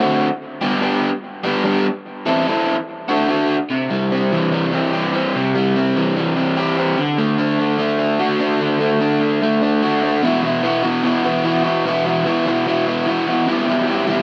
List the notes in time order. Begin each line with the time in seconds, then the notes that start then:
0.00 D3 A3 C4 F#4
0.61 G3 B3 D4 G4
0.81 G3 B3 D4 G4
1.44 G3 B3 D4 G4
1.64 G3 B3 D4 G4
2.26 E3 C4 E4 A4
2.47 E3 C4 E4 A4
3.09 D3 A3 D4 F#4
3.29 D3 A3 D4 F#4
3.70 C3
3.90 G3
4.12 C4
4.32 E3
4.53 G3
4.73 C4
4.93 G4
5.14 C4
5.35 C3
5.55 G3
5.76 C4
5.96 E3
6.16 G3
6.36 C4
6.57 G4
6.78 C4
6.98 D3
7.18 A3
7.38 D4
7.60 D3
7.79 A3
7.99 D4
8.19 F#4
8.40 D4
8.61 D3
8.80 A3
9.00 D4
9.21 D3
9.42 A3
9.62 D4
9.83 F#4
10.03 D4
10.23 B2 E3 B3 E4 F#4
10.42 B3 E4 F#4
10.62 E3 B3 E4 F#4
10.83 B2 E3 B3 E4 F#4
11.02 E3 B3 E4 F#4
11.24 B2 E3 B3 E4 F#4
11.44 E3 B3 E4 F#4
11.64 B3 E4 F#4
11.85 B2 E3 B3 E4 F#4
12.05 B3 E4 F#4
12.24 E3 B3 E4 F#4
12.45 B2 E3 B3 E4 F#4
12.66 E3 B3 E4 F#4
12.86 B2 E3 B3 E4 F#4
13.06 E3 B3 E4 F#4
13.27 B3 E4 F#4
13.46 E2 B2 E3 G3 E4 G4
13.66 E3 G3 E4 G4
13.86 E3 G3 E4 G4
14.07 E2 B2 E3 G3 E4 G4